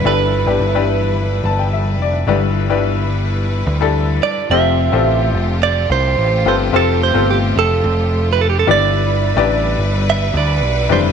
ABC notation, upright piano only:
X:1
M:4/4
L:1/16
Q:1/4=108
K:Flyd
V:1 name="Upright piano"
[DEGA]3 [DEGB]2 [DEGB]8 z3 | [DEGB]3 [DEGB]8 [DEGA]4- [DEGA] | [CFGAc]3 [CFGAc]8 z3 [CFGAB]2 | [CFGAc]3 [CFGAc]8 z3 [DEGBd]2- |
[DEGBd]3 [DEGBd]8 z3 [DEGBd]2 |]
V:2 name="Upright piano" clef=bass
[G,,D,]4 z6 a g e2 d2 | [G,,D,]6 z8 z2 | C,6 z8 z2 | C,6 z8 [G,,D,]2- |
[G,,D,]4 z8 z2 [G,,D,]2 |]